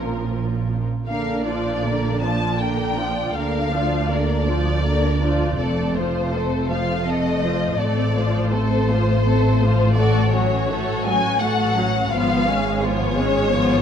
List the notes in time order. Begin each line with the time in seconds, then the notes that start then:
Already playing: A#1 A#2 F3 C#4 F4 A#4
1.07 A#1 A#2 D3 A#3 D4 A#4 F5
1.45 F3 D4 F4 D5
1.84 D3 A#3 D4 A#4
2.20 F3 D4 F4 D5 A5
2.59 D3 A#3 D4 A#4 G5
2.96 F3 D4 F4 D5
3.33 D2 D3 A#3 D4 A#4 F5
3.72 F3 D4 F4 D5
4.10 D3 A#3 D4 A#4 D5
4.48 F3 D4 F4 D5
4.84 D3 A#3 D4 A#4
5.21 F3 D4 F4 D5
5.57 F1 F2 A3 C4 A4 D5
5.95 F3 A3 F4 C5
6.33 A3 C4 A4
6.69 F3 A3 F4 C5 F5
7.05 A3 C4 A4 D#5
7.42 F3 A3 F4 C5
7.78 A1 A2 A3 C4 A4 D5
8.16 F3 A3 F4 C5
8.51 A3 C4 A4 C5
8.89 F3 A3 F4 C5
9.25 A3 C4 A4
9.61 F3 A3 F4 C5
9.94 A3 F#4 A4 D5
10.30 F#3 C#5
10.35 C#4 F#4
10.69 A3 F#4 A4
11.03 F#3 C#4 F#4 G#5
11.39 A3 F#4 A4 F#5
11.75 F#3 C#4 F#4
12.10 G#1 G#2 F3 B3 F4 F5
12.46 G#3 C#4 G#4
12.81 F3 B3 F4 C#5
13.17 G#3 C#4 G#4
13.53 F3 B3 F4